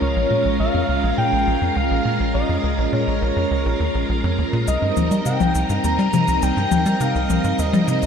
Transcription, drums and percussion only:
4.68 shaker medium
4.97 high tom soft
4.97 shaker medium
5.11 shaker soft
5.26 shaker medium
5.40 high tom medium
5.40 shaker soft
5.55 shaker medium
5.70 shaker soft
5.84 shaker medium
6.13 high tom medium
6.13 shaker medium
6.28 shaker medium
6.42 shaker medium
6.71 high tom medium
6.71 shaker medium
6.86 shaker soft
7.01 shaker medium
7.30 high tom soft
7.30 shaker medium
7.44 shaker soft
7.59 shaker medium
7.73 high tom medium
7.73 shaker soft
7.88 shaker medium
8.02 shaker soft

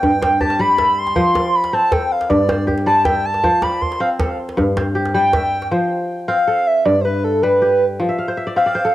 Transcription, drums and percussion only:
0.03 djembe bass medium
0.13 djembe slap soft
0.22 djembe slap medium
0.22 djembe tone medium
0.41 djembe bass medium
0.50 djembe slap medium
0.78 djembe slap medium
0.78 djembe tone medium
1.07 djembe slap medium
1.16 djembe bass medium
1.35 djembe slap medium
1.35 djembe tone medium
1.64 djembe slap medium
1.92 djembe slap medium
1.92 djembe tone medium
1.92 djembe bass medium
2.21 djembe slap medium
2.30 djembe bass medium
2.40 djembe slap soft
2.49 djembe slap medium
2.49 djembe tone medium
2.68 djembe bass medium
2.78 djembe slap medium
3.05 djembe slap medium
3.05 djembe tone medium
3.05 djembe bass medium
3.34 djembe slap medium
3.44 djembe bass medium
3.62 djembe slap medium
3.62 djembe tone medium
3.72 djembe slap soft
3.82 djembe slap soft
3.82 djembe bass medium
3.92 djembe slap medium
4.19 djembe slap medium
4.19 djembe tone medium
4.19 djembe bass medium
4.39 djembe slap soft
4.49 djembe slap medium
4.58 djembe bass medium
4.77 djembe slap medium
4.77 djembe tone medium
5.05 djembe slap medium
5.33 djembe slap medium
5.33 djembe tone medium
5.33 djembe bass medium
5.62 djembe slap soft

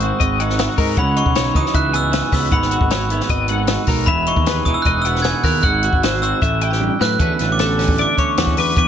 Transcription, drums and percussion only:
0.00 closed hi-hat medium
0.20 kick medium
0.20 closed hi-hat loud
0.40 closed hi-hat medium
0.50 snare soft
0.59 snare loud
0.59 closed hi-hat medium
0.78 kick medium
0.78 open hi-hat medium
0.97 kick loud
0.97 closed hi-hat medium
1.16 closed hi-hat medium
1.26 kick medium
1.35 snare medium
1.35 closed hi-hat medium
1.55 kick medium
1.55 closed hi-hat medium
1.66 snare soft
1.74 kick medium
1.74 closed hi-hat medium
1.94 closed hi-hat medium
2.13 snare loud
2.13 closed hi-hat medium
2.32 kick medium
2.32 snare soft
2.32 open hi-hat medium
2.51 kick loud
2.51 closed hi-hat medium
2.62 snare soft
2.71 closed hi-hat medium
2.81 kick medium
2.90 snare medium
2.90 closed hi-hat medium
3.10 closed hi-hat medium
3.20 snare soft
3.29 kick medium
3.29 closed hi-hat medium
3.48 closed hi-hat medium
3.67 snare loud
3.67 closed hi-hat medium
3.87 kick medium
3.87 snare soft
3.87 open hi-hat medium
4.07 kick loud
4.07 closed hi-hat medium
4.26 closed hi-hat medium
4.36 kick medium
4.46 snare medium
4.46 closed hi-hat medium
4.66 kick medium
4.66 closed hi-hat medium
4.85 kick medium
4.85 closed hi-hat medium
5.05 closed hi-hat medium
5.16 snare soft
5.24 snare loud
5.24 closed hi-hat medium
5.43 kick medium
5.43 snare soft
5.43 open hi-hat medium
5.63 kick loud
5.63 closed hi-hat medium
5.83 closed hi-hat medium
5.93 kick medium
6.03 snare loud
6.03 closed hi-hat medium
6.23 closed hi-hat medium
6.42 kick medium
6.42 closed hi-hat medium
6.61 closed hi-hat medium
6.72 snare soft
6.81 high tom medium
7.01 snare medium
7.20 kick loud
7.20 closed hi-hat medium
7.39 snare soft
7.39 closed hi-hat medium
7.59 snare medium
7.59 closed hi-hat medium
7.79 snare soft
7.79 open hi-hat medium
7.88 kick medium
7.98 closed hi-hat medium
8.18 kick medium
8.18 closed hi-hat medium
8.37 snare loud
8.37 closed hi-hat medium
8.47 kick medium
8.57 open hi-hat medium
8.77 kick loud
8.77 closed hi-hat medium

